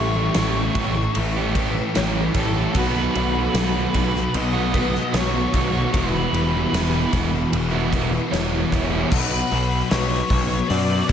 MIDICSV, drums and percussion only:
0, 0, Header, 1, 2, 480
1, 0, Start_track
1, 0, Tempo, 795756
1, 1663, Time_signature, 4, 2, 24, 8
1, 6710, End_track
2, 0, Start_track
2, 0, Title_t, "Drums"
2, 207, Note_on_c, 9, 51, 96
2, 210, Note_on_c, 9, 38, 120
2, 268, Note_off_c, 9, 51, 0
2, 271, Note_off_c, 9, 38, 0
2, 452, Note_on_c, 9, 51, 76
2, 454, Note_on_c, 9, 36, 85
2, 513, Note_off_c, 9, 51, 0
2, 514, Note_off_c, 9, 36, 0
2, 693, Note_on_c, 9, 51, 101
2, 753, Note_off_c, 9, 51, 0
2, 936, Note_on_c, 9, 36, 81
2, 938, Note_on_c, 9, 51, 70
2, 997, Note_off_c, 9, 36, 0
2, 998, Note_off_c, 9, 51, 0
2, 1178, Note_on_c, 9, 51, 95
2, 1181, Note_on_c, 9, 38, 116
2, 1238, Note_off_c, 9, 51, 0
2, 1241, Note_off_c, 9, 38, 0
2, 1414, Note_on_c, 9, 51, 76
2, 1416, Note_on_c, 9, 36, 84
2, 1474, Note_off_c, 9, 51, 0
2, 1476, Note_off_c, 9, 36, 0
2, 1657, Note_on_c, 9, 51, 103
2, 1658, Note_on_c, 9, 36, 109
2, 1717, Note_off_c, 9, 51, 0
2, 1718, Note_off_c, 9, 36, 0
2, 1902, Note_on_c, 9, 51, 68
2, 1963, Note_off_c, 9, 51, 0
2, 2139, Note_on_c, 9, 51, 101
2, 2142, Note_on_c, 9, 38, 109
2, 2199, Note_off_c, 9, 51, 0
2, 2202, Note_off_c, 9, 38, 0
2, 2380, Note_on_c, 9, 36, 84
2, 2381, Note_on_c, 9, 51, 67
2, 2440, Note_off_c, 9, 36, 0
2, 2442, Note_off_c, 9, 51, 0
2, 2507, Note_on_c, 9, 38, 34
2, 2567, Note_off_c, 9, 38, 0
2, 2619, Note_on_c, 9, 51, 92
2, 2680, Note_off_c, 9, 51, 0
2, 2859, Note_on_c, 9, 51, 68
2, 2860, Note_on_c, 9, 36, 82
2, 2919, Note_off_c, 9, 51, 0
2, 2920, Note_off_c, 9, 36, 0
2, 2986, Note_on_c, 9, 38, 33
2, 3046, Note_off_c, 9, 38, 0
2, 3099, Note_on_c, 9, 51, 92
2, 3102, Note_on_c, 9, 38, 105
2, 3159, Note_off_c, 9, 51, 0
2, 3162, Note_off_c, 9, 38, 0
2, 3340, Note_on_c, 9, 36, 84
2, 3340, Note_on_c, 9, 51, 67
2, 3400, Note_off_c, 9, 51, 0
2, 3401, Note_off_c, 9, 36, 0
2, 3582, Note_on_c, 9, 36, 110
2, 3583, Note_on_c, 9, 51, 92
2, 3642, Note_off_c, 9, 36, 0
2, 3644, Note_off_c, 9, 51, 0
2, 3826, Note_on_c, 9, 51, 68
2, 3887, Note_off_c, 9, 51, 0
2, 4067, Note_on_c, 9, 51, 100
2, 4070, Note_on_c, 9, 38, 106
2, 4127, Note_off_c, 9, 51, 0
2, 4130, Note_off_c, 9, 38, 0
2, 4300, Note_on_c, 9, 51, 69
2, 4301, Note_on_c, 9, 36, 82
2, 4360, Note_off_c, 9, 51, 0
2, 4361, Note_off_c, 9, 36, 0
2, 4543, Note_on_c, 9, 51, 105
2, 4603, Note_off_c, 9, 51, 0
2, 4781, Note_on_c, 9, 36, 78
2, 4785, Note_on_c, 9, 51, 67
2, 4841, Note_off_c, 9, 36, 0
2, 4846, Note_off_c, 9, 51, 0
2, 5028, Note_on_c, 9, 51, 99
2, 5031, Note_on_c, 9, 38, 112
2, 5088, Note_off_c, 9, 51, 0
2, 5091, Note_off_c, 9, 38, 0
2, 5262, Note_on_c, 9, 36, 90
2, 5268, Note_on_c, 9, 51, 74
2, 5322, Note_off_c, 9, 36, 0
2, 5328, Note_off_c, 9, 51, 0
2, 5500, Note_on_c, 9, 36, 124
2, 5503, Note_on_c, 9, 49, 124
2, 5560, Note_off_c, 9, 36, 0
2, 5564, Note_off_c, 9, 49, 0
2, 5740, Note_on_c, 9, 46, 70
2, 5800, Note_off_c, 9, 46, 0
2, 5977, Note_on_c, 9, 46, 91
2, 5980, Note_on_c, 9, 38, 123
2, 6037, Note_off_c, 9, 46, 0
2, 6040, Note_off_c, 9, 38, 0
2, 6214, Note_on_c, 9, 36, 94
2, 6216, Note_on_c, 9, 46, 62
2, 6274, Note_off_c, 9, 36, 0
2, 6276, Note_off_c, 9, 46, 0
2, 6453, Note_on_c, 9, 46, 85
2, 6514, Note_off_c, 9, 46, 0
2, 6691, Note_on_c, 9, 46, 62
2, 6692, Note_on_c, 9, 36, 89
2, 6710, Note_off_c, 9, 36, 0
2, 6710, Note_off_c, 9, 46, 0
2, 6710, End_track
0, 0, End_of_file